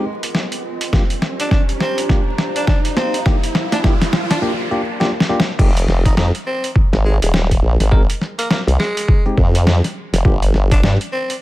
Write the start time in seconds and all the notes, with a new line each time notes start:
Already playing: F4 A#4 D#5 G#5, riser
0.23 closed hi-hat
0.35 snare
0.52 closed hi-hat
0.81 closed hi-hat
0.93 A#3 D4 F4 G4, kick, snare
1.10 closed hi-hat
1.21 C5, snare
1.29 A#5
1.40 D4, closed hi-hat
1.51 D4, kick, snare
1.69 closed hi-hat
1.80 C4, snare
1.98 closed hi-hat
2.09 A#3 D4 F4 G4, kick, snare
2.22 F5
2.38 snare
2.56 D4, closed hi-hat
2.67 D4, kick, snare
2.85 closed hi-hat
2.96 C4, snare
3.14 closed hi-hat
3.25 A#3 D4 F4 G4, kick, snare, noise sweep
3.43 closed hi-hat
3.55 snare
3.72 D4, snare, closed hi-hat
3.84 A#3 D4 F4 G4, kick, snare
4.02 snare, closed hi-hat
4.13 snare
4.31 D4, snare, closed hi-hat
4.42 A#3 D4 F4 G4
4.71 A#3 D4 F4 G4
5.00 A#3 D4 F4 G4, snare
5.20 snare
5.29 A#3 D4 F4 G4
5.40 snare
5.59 F1 G#3 C4 D#4 G4, kick, crash
5.77 closed hi-hat
5.88 F1, snare
6.06 D#4, kick, closed hi-hat
6.17 F2 D#4, snare
6.35 closed hi-hat
6.46 C4
6.64 closed hi-hat
6.76 kick
6.93 G#1, snare
7.05 G#3
7.22 D#1 G#3, closed hi-hat
7.34 snare
7.51 kick, closed hi-hat
7.62 A#1
7.80 G#1, snare, closed hi-hat
7.92 G#3 C4 D#4 A#4, kick
8.10 closed hi-hat
8.21 snare
8.38 A#3, closed hi-hat
8.50 A#3, snare
8.67 C2, closed hi-hat
8.79 G#3, snare
8.97 closed hi-hat
9.08 kick
9.26 G#3 C4 D#4 G4
9.38 F2, kick
9.55 closed hi-hat
9.67 snare
9.84 snare, closed hi-hat
10.13 F1, snare, closed hi-hat
10.25 G1 A#3 D4 F4 G4, kick
10.42 closed hi-hat
10.54 G1, snare
10.71 D4, kick, closed hi-hat
10.83 G2 D4, snare
11.01 closed hi-hat
11.13 C4
11.30 closed hi-hat